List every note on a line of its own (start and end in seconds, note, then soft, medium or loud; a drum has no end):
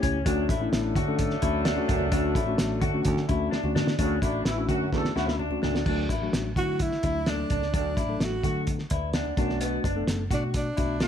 0.00 0.23 C#2 loud
0.00 0.17 A3 medium
0.00 0.17 C#4 medium
0.00 0.21 C#4 medium
0.00 0.18 E4 medium
0.00 0.18 G4 medium
0.00 kick medium
0.00 closed hi-hat medium
0.00 low conga medium
0.26 0.46 D2 loud
0.26 0.44 D2 medium
0.26 3.72 F#3 medium
0.26 0.52 A3 medium
0.26 3.72 A3 medium
0.26 0.52 C#4 medium
0.26 0.44 D4 medium
0.26 3.72 D4 medium
0.26 0.53 D4 medium
0.26 0.53 F#4 loud
0.26 3.72 A4 loud
0.26 kick loud
0.26 closed hi-hat loud
0.49 0.69 A1 medium
0.49 0.67 E4 medium
0.49 kick medium
0.49 closed hi-hat medium
0.49 high conga medium
0.61 0.96 A3 medium
0.61 0.96 C#4 medium
0.61 0.96 D4 medium
0.61 0.97 E4 loud
0.72 0.92 A1 loud
0.72 snare loud
0.72 closed hi-hat medium
0.95 1.35 D3 loud
0.95 1.14 F#4 medium
0.95 kick medium
0.95 closed hi-hat medium
0.95 muted conga soft
0.95 high conga medium
0.95 low conga medium
1.07 1.34 A3 medium
1.07 1.34 C#4 medium
1.07 1.34 D4 medium
1.07 1.34 A4 loud
1.19 kick medium
1.19 closed hi-hat medium
1.19 muted conga soft
1.19 high conga soft
1.19 low conga medium
1.30 snare soft
1.42 1.72 D2 medium
1.42 1.69 A3 medium
1.42 1.69 C#4 medium
1.42 1.69 D4 medium
1.42 1.61 E4 medium
1.42 1.69 F#4 loud
1.42 kick medium
1.42 closed hi-hat medium
1.42 muted conga soft
1.42 high conga medium
1.65 1.84 D4 medium
1.65 snare loud
1.65 closed hi-hat medium
1.65 muted conga soft
1.65 high conga medium
1.77 2.04 A3 medium
1.77 2.04 C#4 medium
1.77 2.04 D4 medium
1.77 2.04 F#4 loud
1.77 high conga medium
1.88 1.99 D2 medium
1.88 2.07 F#2 medium
1.88 2.07 D4 medium
1.88 kick medium
1.88 closed hi-hat medium
1.88 low conga medium
2.01 2.11 C#2 medium
2.11 2.45 D2 medium
2.11 2.32 D2 loud
2.11 2.38 A3 medium
2.11 2.39 C#4 medium
2.11 2.30 D4 medium
2.11 2.39 D4 medium
2.11 2.39 F#4 medium
2.11 kick loud
2.11 closed hi-hat loud
2.35 2.55 A1 medium
2.35 2.53 E4 medium
2.35 kick medium
2.35 closed hi-hat medium
2.35 high conga medium
2.47 2.83 A3 medium
2.47 2.83 C#4 medium
2.47 2.83 D4 medium
2.47 2.83 F#4 medium
2.58 2.79 A1 medium
2.58 snare loud
2.58 closed hi-hat medium
2.58 muted conga soft
2.81 3.02 D3 medium
2.81 3.00 F#4 medium
2.81 kick medium
2.81 closed hi-hat medium
2.81 high conga medium
2.81 low conga medium
2.94 3.21 A3 medium
2.94 3.21 C#4 medium
2.94 3.21 D4 medium
2.94 3.21 F#4 medium
3.05 3.24 D2 medium
3.05 3.25 D3 loud
3.05 kick medium
3.05 closed hi-hat medium
3.05 muted conga soft
3.05 high conga medium
3.05 low conga medium
3.17 snare soft
3.29 3.49 D2 medium
3.29 3.56 A3 medium
3.29 3.56 C#4 medium
3.29 3.56 D4 medium
3.29 3.47 E4 medium
3.29 3.56 F#4 medium
3.29 kick medium
3.29 closed hi-hat medium
3.29 muted conga soft
3.29 high conga medium
3.51 3.70 D4 medium
3.51 snare medium
3.51 high conga medium
3.63 3.74 D2 medium
3.63 3.91 A3 medium
3.63 3.91 C#4 medium
3.63 3.91 D4 medium
3.63 3.91 F#4 medium
3.63 high conga medium
3.75 3.95 D3 medium
3.75 3.94 D4 medium
3.75 snare loud
3.75 muted conga soft
3.75 low conga medium
3.87 snare medium
3.99 4.19 D2 loud
3.99 4.18 D2 medium
3.99 4.18 C#3 medium
3.99 4.17 A3 medium
3.99 4.18 C#4 medium
3.99 4.17 C#4 medium
3.99 4.17 D4 medium
3.99 4.17 F#4 medium
3.99 kick loud
3.99 closed hi-hat medium
4.22 4.42 A1 medium
4.22 4.41 D3 medium
4.22 4.49 A3 medium
4.22 4.49 C#4 medium
4.22 4.41 D4 medium
4.22 4.49 D4 medium
4.22 4.41 E4 medium
4.22 4.49 F#4 medium
4.22 kick medium
4.22 closed hi-hat medium
4.22 muted conga soft
4.22 high conga medium
4.45 4.65 A1 medium
4.45 4.64 E3 medium
4.45 4.64 E4 medium
4.45 snare loud
4.45 closed hi-hat medium
4.57 4.84 A3 medium
4.57 4.84 C#4 medium
4.57 4.84 D4 medium
4.57 4.84 F#4 medium
4.69 4.88 F#2 medium
4.69 5.09 D3 medium
4.69 4.88 F#3 medium
4.69 4.87 F#4 medium
4.69 4.88 F#4 medium
4.69 kick medium
4.69 closed hi-hat medium
4.69 muted conga soft
4.69 high conga medium
4.69 low conga medium
4.92 5.11 E2 medium
4.92 5.10 A3 medium
4.92 5.11 A3 medium
4.92 5.11 C#4 medium
4.92 5.11 D4 medium
4.92 5.11 F#4 medium
4.92 5.11 A4 medium
4.92 kick medium
4.92 snare medium
4.92 high conga soft
4.92 low conga medium
5.05 snare medium
5.16 5.56 D2 medium
5.16 5.35 F#3 medium
5.16 5.43 A3 medium
5.16 5.43 C#4 medium
5.16 5.43 D4 medium
5.16 5.34 E4 medium
5.16 5.35 F#4 medium
5.16 5.43 F#4 medium
5.16 snare medium
5.16 high conga medium
5.28 snare medium
5.39 5.58 D4 medium
5.39 muted conga soft
5.39 high conga medium
5.50 5.78 A3 medium
5.50 5.78 C#4 medium
5.50 5.78 D4 medium
5.50 5.78 F#4 medium
5.50 high conga medium
5.62 5.83 C#2 medium
5.62 5.81 D2 medium
5.62 5.81 D4 medium
5.62 snare medium
5.62 muted conga soft
5.62 low conga medium
5.75 snare medium
5.86 6.06 D2 loud
5.86 6.05 D2 medium
5.86 6.13 F#3 medium
5.86 6.13 A3 medium
5.86 6.05 D4 medium
5.86 6.14 D4 medium
5.86 6.14 F#4 medium
5.86 kick loud
5.86 crash medium
6.09 6.29 A1 medium
6.09 6.28 E4 medium
6.09 kick medium
6.09 closed hi-hat medium
6.09 muted conga soft
6.09 high conga medium
6.22 6.48 F#3 medium
6.22 6.49 A3 medium
6.22 6.49 D4 medium
6.22 6.49 F#4 medium
6.33 6.53 A1 medium
6.33 snare loud
6.33 closed hi-hat medium
6.56 6.96 D3 medium
6.56 6.92 F#3 medium
6.56 6.93 A3 medium
6.56 6.93 D4 medium
6.56 6.93 E4 medium
6.56 6.75 F#4 medium
6.56 6.83 F#4 medium
6.56 kick medium
6.56 closed hi-hat medium
6.56 muted conga soft
6.56 high conga medium
6.56 low conga medium
6.79 7.31 E4 loud
6.79 kick medium
6.79 closed hi-hat medium
6.92 snare soft
7.03 7.44 D2 medium
7.03 7.21 F#3 medium
7.03 7.21 A3 medium
7.03 7.22 D4 medium
7.03 7.22 E4 medium
7.03 kick medium
7.03 closed hi-hat medium
7.03 high conga medium
7.26 7.62 F#3 medium
7.26 7.63 A3 medium
7.26 7.45 D4 medium
7.26 7.63 D4 medium
7.26 7.75 D4 medium
7.26 7.63 A4 medium
7.26 snare loud
7.26 closed hi-hat medium
7.26 muted conga soft
7.26 high conga medium
7.38 high conga medium
7.50 7.70 C#2 medium
7.50 7.69 D4 medium
7.50 kick medium
7.50 closed hi-hat medium
7.50 low conga medium
7.62 snare soft
7.73 7.94 D2 loud
7.73 7.92 D2 medium
7.73 8.00 F#3 medium
7.73 8.00 A3 medium
7.73 7.92 D4 medium
7.73 8.00 D4 medium
7.73 8.25 D4 medium
7.73 8.01 F#4 medium
7.73 kick loud
7.73 closed hi-hat medium
7.73 muted conga soft
7.97 8.17 A1 medium
7.97 8.15 E4 medium
7.97 kick medium
7.97 closed hi-hat medium
7.97 high conga medium
8.09 8.35 F#3 medium
8.09 8.36 A3 medium
8.09 8.36 D4 medium
8.09 8.36 A4 medium
8.20 8.40 A1 medium
8.20 8.69 F#4 medium
8.20 snare loud
8.20 closed hi-hat medium
8.44 8.84 D3 medium
8.44 8.79 F#3 medium
8.44 8.80 A3 medium
8.44 8.80 D4 medium
8.44 8.62 F#4 medium
8.44 8.80 A4 medium
8.44 kick medium
8.44 closed hi-hat medium
8.44 high conga medium
8.44 low conga medium
8.67 kick medium
8.67 closed hi-hat medium
8.79 snare soft
8.90 9.31 D2 medium
8.90 9.09 E4 medium
8.90 9.13 B4 medium
8.90 9.13 D5 medium
8.90 kick medium
8.90 closed hi-hat medium
8.90 muted conga soft
8.90 high conga medium
9.13 9.33 D4 medium
9.13 9.59 D5 medium
9.13 9.59 F#5 medium
9.13 snare loud
9.13 closed hi-hat medium
9.13 muted conga soft
9.13 high conga medium
9.25 high conga medium
9.37 9.77 B1 medium
9.37 9.56 F#2 medium
9.37 9.84 A3 medium
9.37 9.85 B3 medium
9.37 9.56 D4 medium
9.37 9.85 D4 medium
9.37 9.85 F#4 loud
9.37 kick loud
9.37 closed hi-hat medium
9.37 muted conga soft
9.37 low conga medium
9.50 snare soft
9.61 9.80 B2 medium
9.61 9.80 B3 medium
9.61 closed hi-hat medium
9.84 10.04 F#1 medium
9.84 10.03 D4 medium
9.84 kick medium
9.84 closed hi-hat medium
9.84 high conga medium
9.95 10.22 A3 medium
9.95 10.23 B3 medium
9.95 10.23 D4 medium
9.95 10.23 A4 medium
10.07 10.27 F#1 medium
10.07 snare loud
10.07 closed hi-hat medium
10.07 muted conga soft
10.31 10.71 B2 medium
10.31 10.67 A3 medium
10.31 10.67 B3 medium
10.31 10.67 D4 medium
10.31 10.44 D4 medium
10.31 10.49 F#4 medium
10.31 10.67 F#4 medium
10.31 kick medium
10.31 closed hi-hat medium
10.31 high conga medium
10.31 low conga medium
10.54 10.99 D4 medium
10.54 kick medium
10.54 closed hi-hat medium
10.54 muted conga soft
10.77 11.08 B1 medium
10.77 10.95 A3 medium
10.77 10.96 B3 medium
10.77 10.96 D4 medium
10.77 10.96 E4 medium
10.77 10.96 F#4 medium
10.77 kick medium
10.77 closed hi-hat medium
10.77 high conga medium
11.00 11.08 A3 medium
11.00 11.08 B3 medium
11.00 11.08 D4 medium
11.00 11.08 F#4 medium
11.00 11.08 A4 medium
11.00 snare loud
11.00 closed hi-hat medium
11.00 muted conga soft
11.00 high conga medium